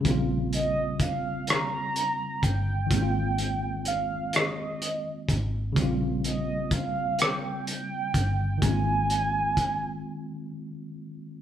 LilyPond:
<<
  \new Staff \with { instrumentName = "Soft synth lead" } { \time 6/8 \key bes \dorian \tempo 4. = 42 r8 ees''8 f''8 bes''4 g''8~ | g''4 f''8 ees''4 r8 | r8 ees''8 f''8 g''4. | aes''2 r4 | }
  \new Staff \with { instrumentName = "Tine electric piano" } { \time 6/8 \key bes \dorian <des g bes c' f'>2. | <ees aes bes c' ees' f'>2. | <des g bes c' f'>2. | <ees aes bes c' f'>2. | }
  \new Staff \with { instrumentName = "Fingered electric bass" } { \clef bass \time 6/8 \key bes \dorian bes,,2~ bes,,8 g,,8 | aes,,2~ aes,,8 aes,,8 | bes,,2~ bes,,8 g,,8 | aes,,4. r4. | }
  \new DrumStaff \with { instrumentName = "Drums" } \drummode { \time 6/8 <hh bd>8 hh8 <hh bd>8 <hh ss>8 hh8 <hh bd>8 | <hh bd>8 hh8 hh8 <hh ss>8 hh8 <hh bd>8 | <hh bd>8 hh8 <hh bd>8 <hh ss>8 hh8 <hh bd>8 | <hh bd>8 hh8 <hh bd>8 r4. | }
>>